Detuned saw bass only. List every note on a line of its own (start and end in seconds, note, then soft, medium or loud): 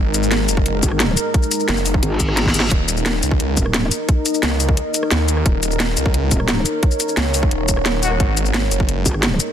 0.00 0.47 G#1 loud
0.49 0.81 F#1 loud
1.69 2.01 F#1 medium
2.71 3.21 D#1 loud
3.23 3.56 C#2 loud
4.43 4.76 C#2 medium
5.11 5.44 D#2 loud
5.46 5.96 D#1 loud
5.97 6.30 C#2 loud
7.17 7.50 C#2 medium
7.51 8.19 D#1 loud
8.20 8.70 G#1 loud
8.71 9.04 F#1 loud